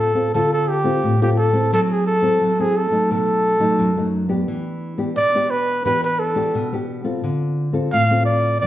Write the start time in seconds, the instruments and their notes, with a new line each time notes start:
Already playing: nylon-string guitar A2 C4 F4 A4
0.00 trumpet A4
0.15 nylon-string guitar C4 F4 A4
0.34 nylon-string guitar D3 C4 F4 A4, trumpet A4
0.53 trumpet A4
0.69 trumpet G4
0.84 nylon-string guitar C4 F4 A4
1.03 nylon-string guitar A2
1.21 nylon-string guitar C4 F4 A4, trumpet G4
1.38 trumpet A4
1.53 nylon-string guitar C4 E4 A4
1.73 nylon-string guitar F#3, trumpet A4
1.91 trumpet G#4
2.07 trumpet A4
2.22 nylon-string guitar C4 E4 A4
2.41 nylon-string guitar F#3
2.59 nylon-string guitar C4 E4 A4, trumpet G#4
2.76 trumpet A4
2.90 nylon-string guitar F#3 A3 D#4
3.11 nylon-string guitar B2, trumpet A4
3.60 nylon-string guitar F#3 A3 D#4
3.79 nylon-string guitar F#2
3.97 nylon-string guitar F#3 A3 D#4
4.29 nylon-string guitar B3 D4 G4
4.48 nylon-string guitar E3
4.98 nylon-string guitar B3 D4 G4
5.16 nylon-string guitar B2, trumpet D5
5.35 nylon-string guitar B3 D4 G4
5.51 trumpet B4
5.85 nylon-string guitar E3 B3 D4 G4, trumpet B4
6.04 trumpet B4
6.19 trumpet A4
6.35 nylon-string guitar B3 D4 G4
6.55 nylon-string guitar B2
6.73 nylon-string guitar B3 D4 G4
7.04 nylon-string guitar C4 F4 A4
7.24 nylon-string guitar D3
7.73 nylon-string guitar C4 F4 A4
7.93 nylon-string guitar A2, trumpet F5
8.11 nylon-string guitar C4 F4 A4
8.26 trumpet D5
8.60 nylon-string guitar G2 F3 B3 D4, trumpet D5